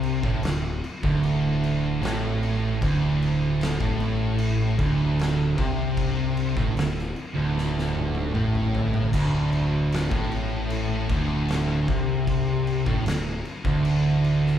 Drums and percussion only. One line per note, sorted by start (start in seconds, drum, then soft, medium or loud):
0.03 crash medium
0.23 kick loud
0.43 snare loud
0.43 crash medium
0.84 crash medium
1.03 kick loud
1.23 crash medium
1.64 crash medium
2.03 snare loud
2.03 crash medium
2.43 crash medium
2.82 kick loud
2.82 crash medium
3.22 crash medium
3.61 snare loud
3.61 crash medium
3.81 kick loud
4.00 crash medium
4.38 crash medium
4.79 kick loud
4.79 crash medium
5.19 snare loud
5.19 crash medium
5.58 kick loud
5.58 crash medium
5.97 kick loud
5.97 crash medium
6.37 crash medium
6.57 kick loud
6.77 snare loud
6.77 crash medium
6.99 snare soft
7.16 crash medium
7.58 snare medium
7.79 snare medium
7.95 high tom medium
8.15 high tom medium
8.35 mid tom medium
8.55 mid tom medium
8.75 floor tom loud
8.94 floor tom loud
9.13 kick loud
9.13 crash loud
9.13 crash medium
9.53 crash medium
9.92 snare loud
9.92 crash medium
10.11 kick loud
10.32 crash medium
10.70 crash medium
11.10 kick loud
11.10 crash medium
11.48 snare loud
11.48 crash medium
11.88 kick loud
11.88 crash medium
12.27 kick loud
12.27 crash medium
12.67 crash medium
12.86 kick loud
13.06 snare loud
13.06 crash medium
13.45 crash medium
13.65 kick loud
13.85 crash medium
14.24 crash medium
14.46 snare soft